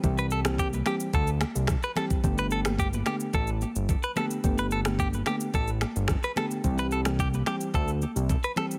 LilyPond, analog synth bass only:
\new Staff \with { instrumentName = "Analog synth bass" } { \clef bass \time 4/4 \key g \major \tempo 4 = 109 c,4. r8 d,8. c,8 r8. | g,,4. r8 a,,8. g,,8 r8. | g,,4. r8 a,,8. g,,8 r8. | c,4. r8 d,8. c,8 r8. | }